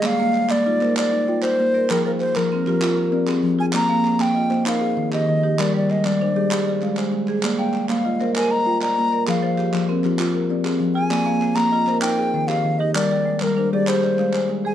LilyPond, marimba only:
\new Staff \with { instrumentName = "Marimba" } { \time 12/8 \key bes \mixolydian \tempo 4. = 130 << { ees''4 c''4. bes'4. g''4. d''8 | g''4 r4. f'4. d''4. aes'8 | d''4 c''4. r4. c''4. g'8 | c''4 aes4. g'4. f''4. c''8~ |
c''4 c''4. bes'4. g''4. d''8~ | d''4 g'4. f'4. d''4. aes'8 | d''4 c''4. bes'4. c''4. g'8 | c''4 aes4. g'4. f''4. c''8 | } \\ { r8 bes4 r8 f'4 bes'4 r8 f'4 bes'8~ | bes'8 f4 r8 c'4 f'4 r8 c'4 f'8~ | f'8 bes4 r8 f'4 bes'8 r4 ees4 ees'8~ | ees'8 g4 r8 d'4 g'8 r4 aes4 aes'8~ |
aes'8 bes4 r8 f'4 bes'4 r8 f'4 bes'8~ | bes'8 f4 r8 c'4 f'4 r8 c'4 f'8~ | f'8 bes4 r8 f'4 bes'8 r4 ees4 ees'8~ | ees'8 g4 r8 d'4 g'8 r4 aes4 aes'8 | } >> }